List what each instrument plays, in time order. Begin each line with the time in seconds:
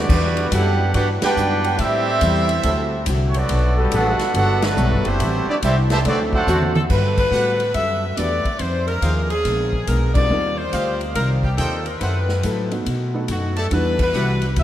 Already playing: trombone section G3 B3 D4, trumpet section B3 F#4 G4 D5
0.08 upright bass E2, steel-string acoustic guitar E3 G3 D4 F#4, trombone section G3 D4 E4 B4, kick, crash
0.37 ride
0.49 upright bass F#2, steel-string acoustic guitar E3 G3 D4, trombone section B3 D4 G4, trumpet section D4 G4 F#5, kick, hi-hat pedal, ride
0.53 trombone section F#3 D4 E4 A4, steel-string acoustic guitar F#4, trumpet section B4
0.92 upright bass G2, steel-string acoustic guitar E3 G3 D4, trombone section B3 D4 F#4, trumpet section D4 G4 B4 F#5, kick, ride
0.97 steel-string acoustic guitar F#4
1.21 trombone section B3 D4 G4, trumpet section D4 B4 F#5 G5, muted upright bass stroke, snare, ride
1.36 upright bass F#2, steel-string acoustic guitar E3 G3 D4 F#4, hi-hat pedal
1.64 ride
1.77 steel-string acoustic guitar A2 G3 C4, upright bass A2, trombone section G3 C4 E4, trumpet section C4 G4 A4 E5, kick, ride
1.81 steel-string acoustic guitar E4
2.21 upright bass E2, steel-string acoustic guitar A2 G3 C4 E4, kick, hi-hat pedal, ride
2.49 ride
2.63 upright bass D2, steel-string acoustic guitar D3 A3, trombone section F#3 C4 D4 A4, kick, ride
2.67 steel-string acoustic guitar C4 F#4
3.06 upright bass C2, steel-string acoustic guitar D3 A3 C4 F#4, kick, hi-hat pedal, ride
3.29 trumpet section C#5
3.34 trombone section F#3 B3 D4, trumpet section B3 F#4 A4 D5, ride
3.48 upright bass B1, steel-string acoustic guitar G3 B3 F#4 A4, kick, ride
3.77 trombone section G3 B3 F#4 A4
3.91 upright bass A1, steel-string acoustic guitar G3 B3 F#4 A4, trombone section B3 D4 F#4, trumpet section D4 A4 B4 F#5, kick, hi-hat pedal, ride
4.19 muted upright bass stroke, snare, ride
4.33 upright bass G1, steel-string acoustic guitar G3 B3 F#4 A4, trombone section B3 D4 F#4, trumpet section D4 A4 B4 F#5, kick, ride
4.61 trombone section D3 F#3 B3, trumpet section A3 D4 F#4 B4, snare, ride
4.76 upright bass B1, steel-string acoustic guitar G3 B3 F#4 A4, hi-hat pedal
4.91 upright bass G1
5.03 upright bass F#1, trombone section E3 G3 C4, trumpet section A3 E4 G4 C5, ride
5.20 upright bass A1, steel-string acoustic guitar A2 G3 C4 E4, kick, ride
5.47 trumpet section B3 E4 G4 D5, trombone section D4, muted upright bass stroke
5.61 upright bass C2, steel-string acoustic guitar A2 G3 C4 E4, trombone section G3 C4 E4, trumpet section C4 G4 A4 E5, kick, hi-hat pedal, ride
5.90 trombone section C3 E3 A3, trumpet section G4 C5 E5 A5, snare, ride
6.05 upright bass D2, steel-string acoustic guitar D3 A3 C4 F#4, trombone section F#3 A3 C4 D4 A4, trumpet section C4 F#4 A4 D5, kick, ride
6.33 trombone section A3 C4 F#4, trumpet section D4 A4 C5 F#5, kick
6.47 upright bass E2, steel-string acoustic guitar D3 A3 C4 F#4, saxophone section F#4, hi-hat pedal
6.62 high tom
6.76 saxophone section A4, high tom
6.90 upright bass G2, steel-string acoustic guitar G3 B3 F#4 A4, saxophone section B4, kick, crash
7.18 saxophone section B4, kick, crash
7.31 upright bass A2, steel-string acoustic guitar G3 B3 F#4 A4, trumpet section G4 A4 B4 F#5, hi-hat pedal
7.60 ride
7.74 upright bass F#2, steel-string acoustic guitar G3 B3 F#4 A4, saxophone section E5, kick, ride
8.16 upright bass E2, steel-string acoustic guitar G3 B3 F#4 A4, grand piano A3 D4 F#4 G4 B4, saxophone section D5, kick, hi-hat pedal, ride
8.45 muted upright bass stroke, kick, ride
8.59 upright bass F2, steel-string acoustic guitar F3 C4 D#4 G#4, saxophone section C5, kick, ride
8.88 saxophone section A#4, ride
9.01 upright bass D#2, steel-string acoustic guitar F3 C4 D#4 G#4, trumpet section G#4 C5 D#5 F5, kick, hi-hat pedal, ride
9.29 saxophone section G#4, ride
9.44 upright bass A#1, steel-string acoustic guitar A#2 G#3 B3 D4, kick, snare, ride
9.73 kick
9.87 upright bass B1, steel-string acoustic guitar A#2 G#3 B3 D4, saxophone section A#4, kick, hi-hat pedal, ride
10.15 grand piano G3 C4 D#4 F4 A#4, saxophone section D5, kick, crash
10.30 upright bass D#2, steel-string acoustic guitar D#3 C4 F4 G4, grand piano G3 C4 D#4 F4 A#4
10.58 saxophone section C5
10.72 upright bass D2, steel-string acoustic guitar D#3 C4 F4 G4, trumpet section G4 C5 D#5 F5, kick, hi-hat pedal, ride
11.01 ride
11.14 upright bass C2, steel-string acoustic guitar D#3 C4 F4 G4, saxophone section A#4, kick, ride
11.43 saxophone section G4, kick
11.57 upright bass D#2, steel-string acoustic guitar D#3 C4 F4 G4, trumpet section G4 C5 D#5 G5, saxophone section A4, kick, hi-hat pedal, ride
11.86 saxophone section B4, ride
12.01 upright bass F#2, steel-string acoustic guitar F#3 C4 E4 A4, trumpet section A4 C5 E5 F#5, kick, ride
12.29 snare
12.43 upright bass A2, steel-string acoustic guitar F#3 C4 E4 A4, kick, hi-hat pedal, ride
12.71 grand piano A3 B3 D#4 F#4 A4, ride
12.86 steel-string acoustic guitar B2 A3 D#4 F#4, upright bass B2, kick, ride
13.14 grand piano A3 B3 D#4 F#4 A4
13.28 upright bass F#2, steel-string acoustic guitar B2 A3 D#4 F#4, saxophone section F#4, kick, hi-hat pedal, ride
13.56 trumpet section G4 D5 E5 A5, saxophone section A4, ride
13.71 upright bass E2, steel-string acoustic guitar E3 G3 D4 F#4, grand piano G3 B3 D4 E4 F#4, saxophone section B4, kick, ride
13.99 saxophone section B4, kick, crash
14.13 upright bass C2, steel-string acoustic guitar E3 G3 D4 F#4, trumpet section G4 D5 E5 F#5, hi-hat pedal
14.42 ride
14.56 upright bass D2, steel-string acoustic guitar E3 G3 D4 F#4, saxophone section E5, kick, ride